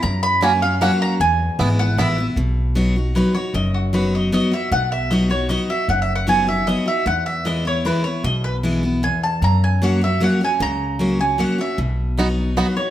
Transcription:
<<
  \new Staff \with { instrumentName = "Mandolin" } { \time 3/4 \key b \mixolydian \tempo 4 = 153 ais''8 b''8 gis''8 f''8 fis''8 ais''8 | gis''4. fis''8 e''8. r16 | r2 b'8 cis''8 | dis''8 fis'8 b'8 dis''8 dis''8 e''8 |
fis''8 e''8 dis''8 cis''8 dis''8 e''8 | \tuplet 3/2 { fis''8 e''8 fis''8 } gis''8 e''8 dis''8 e''8 | fis''8 e''8 dis''8 cis''8 b'8 cis''8 | dis''8 b'8 r4 gis''8 a''8 |
ais''8 gis''8 fis''8 e''8 fis''8 gis''8 | ais''4. gis''8 fis''8 e''8 | r2 b'8 cis''8 | }
  \new Staff \with { instrumentName = "Five-string banjo" } { \time 3/4 \key b \mixolydian r4 <ais cis' fis'>8 r8 <ais cis' fis'>8 r8 | r4 <b e'>8 r8 <b e'>8 r8 | r2. | r2. |
r2. | r2. | r2. | r2. |
r2. | r2. | r4 <b dis' fis'>8 r8 <b dis' fis'>8 r8 | }
  \new Staff \with { instrumentName = "Steel-string acoustic guitar" } { \time 3/4 \key b \mixolydian << { r4 <fis ais cis' fis'>8 <cis' fis'>8 <fis ais cis' fis'>4 | r4 <e gis b e'>8 <b e'>8 <e gis b e'>8 <b e'>8 | r4 <fis b dis' fis'>8 <dis' fis'>8 <fis b dis' fis'>8 <dis' fis'>8 | r4 <fis b dis' fis'>4 <fis b dis' fis'>8 <dis' fis'>8 |
r4 <fis b dis' fis'>8 <dis' fis'>8 <fis b dis' fis'>8 <dis' fis'>8 | r4 <fis b dis' fis'>8 <dis' fis'>8 <fis b dis' fis'>8 <dis' fis'>8 | r4 <e gis b e'>8 <b e'>8 <e gis b e'>8 <b e'>8 | r4 <e gis b e'>8 <b e'>8 r4 |
r4 <fis ais cis' fis'>8 <cis' fis'>8 <fis ais cis' fis'>8 <cis' fis'>8 | r4 <fis ais cis' fis'>8 <cis' fis'>8 <fis ais cis' fis'>8 <cis' fis'>8 | r4 <fis b dis' fis'>4 <fis b dis' fis'>8 <dis' fis'>8 | } \\ { fis,2 r4 | e,2 r4 | b,2 r4 | fis,2 r4 |
b,2 r4 | fis,2 r4 | e,2 r4 | b,2 e,4 |
fis,2 r4 | cis2 r4 | b,2 r4 | } >> }
  \new Staff \with { instrumentName = "Upright bass" } { \clef bass \time 3/4 \key b \mixolydian fis,2. | e,4 gis,,4 a,,4 | b,,2. | fis,,2. |
b,,2. | fis,,2. | e,2. | b,,2. |
fis,2. | cis,2. | b,,2. | }
>>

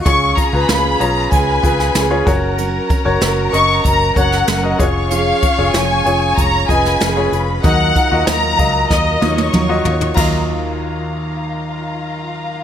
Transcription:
<<
  \new Staff \with { instrumentName = "Violin section" } { \time 4/4 \key ees \minor \tempo 4 = 95 des'''8 bes''8 ces'''8 bes''8 aes''4. r8 | r4. des'''8 bes''8 ges''4 r8 | f''4 aes''4 bes''8 aes''4 r8 | ges''4 bes''4 ees''4 r4 |
r1 | }
  \new Staff \with { instrumentName = "Violin section" } { \time 4/4 \key ees \minor <aes' aes''>4. <ces'' ces'''>2 <bes' bes''>8~ | <bes' bes''>2.~ <bes' bes''>8 <des'' des'''>8~ | <des'' des'''>2~ <des'' des'''>8 <ces'' ces'''>4. | <bes' bes''>2~ <bes' bes''>8 <des'' des'''>4. |
<f' f'' bes''>1 | }
  \new Staff \with { instrumentName = "Grand piano" } { \time 4/4 \key ees \minor <f' aes' des''>8 r16 <f' aes' ces''>8 r16 <f' aes' des''>8. r16 <f' aes' ces''>8 r16 <f' aes' des''>16 <ges' bes' des''>8~ | <ges' bes' des''>8 r16 <ges' bes' des''>8 r16 <ges' bes' ees''>8. r16 <ges' bes' des''>8 r16 <ges' bes' ees''>16 <f' aes' des''>8~ | <f' aes' des''>8 r16 <f' aes' des''>8 r16 <f' aes' des''>8. r16 <f' aes' ees''>8 r16 <f' aes' des''>8 r16 | <ges ees' ees''>8 r16 <f' ges' ees''>8 r16 <ges ees'' f''>8. r16 <ges f' ees''>8 r16 <f' ges' ees''>8 r16 |
<ges f' ees''>1 | }
  \new Staff \with { instrumentName = "Grand piano" } { \clef bass \time 4/4 \key ees \minor des4. r2 r8 | r1 | r1 | ees4. r2 r8 |
ees,1 | }
  \new Staff \with { instrumentName = "Steel-string acoustic guitar" } { \time 4/4 \key ees \minor <des aes des' f' aes'>8 <des' f' aes'>8 <des aes des' f' aes'>8 <des' f' aes'>8 <aes des' f' aes'>8 <des' f' aes'>8 <des aes des' f' aes'>8 <des' ges' bes'>8 | <ges des' ges' bes'>8 <des' ges' bes'>8 <ges des' ges' bes'>8 <des' ges' bes'>8 <ges des' ges' bes'>8 <des' ges' bes'>8 <ges des' ges' bes'>8 <des' f' aes'>8 | <f aes des' f' aes'>8 <des' f' aes'>8 <f aes des' f' aes'>8 <des' f' aes'>8 <aes des' f' aes'>8 <des' f' aes'>8 <f aes des' f' aes'>8 <des' f' aes'>8 | <ees ges ees' f' bes'>8 <ees' f' bes'>8 <ees ges ees' f' bes'>8 <ees' f' bes'>8 <ges ees' f' bes'>8 <ees' f' bes'>8 <ees ges ees' f' bes'>8 <ees' f' bes'>8 |
<ees ges ees' f' bes'>1 | }
  \new Staff \with { instrumentName = "Fingered electric bass" } { \clef bass \time 4/4 \key ees \minor des,8 r16 des,16 des,8 ces,8 des,8 des,8 des,8 ges,,8~ | ges,,8 r16 ges,,16 ges,,8 ges,,8 ges,,8 ges,,8 ges,,8 f,,8~ | f,,8 r16 f,,16 f,,8 f,,8 f,,8 f,,8 f,,8 f,,8 | ees,8 r16 ees,16 ees,8 des,8 ees,8 ees,8 ees,8 ees,8 |
ees,1 | }
  \new DrumStaff \with { instrumentName = "Drums" } \drummode { \time 4/4 <hh bd>8 <hh bd>8 <hh sn>8 hh8 <hh bd>8 <hh bd>16 sn16 <hh sn>8 <hh bd>8 | hh8 <hh bd>8 <hh sn>8 hh8 <hh bd>8 <hh bd>16 sn16 <hh sn>8 <hh bd>8 | hh8 <hh bd>8 <hh sn>8 hh8 <hh bd>8 <hh bd>16 sn16 <hh sn>8 hh8 | <hh bd>8 <hh bd>8 <hh sn>8 <hh bd>8 <bd sn>8 tommh16 tommh16 toml8 tomfh16 tomfh16 |
<cymc bd>4 r4 r4 r4 | }
>>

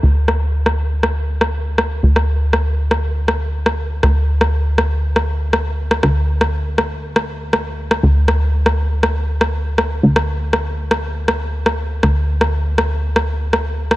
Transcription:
<<
  \new Staff \with { instrumentName = "Analog synth bass" } { \clef bass \time 4/4 \key c \mixolydian \tempo 4 = 120 d,1 | d,1 | d,1 | d,1 |
d,1 | d,1 | d,1 | }
  \new DrumStaff \with { instrumentName = "Drums" } \drummode { \time 4/4 r8 ss8 r16 ss8. ss8. ss16 r8 ss8 | r16 ss8. ss8. ss16 r8 ss8 r16 ss8. | ss8. ss16 r8 ss8 r16 ss8. ss8. ss16 | ss8. ss16 r8 ss8 r16 ss8. ss8. ss16 |
r8 ss8 r16 ss8. ss8. ss16 r8 ss8 | r16 ss8. ss8. ss16 r8 ss8 r16 ss8. | ss8. ss16 r8 ss8 r16 ss8. ss8. ss16 | }
>>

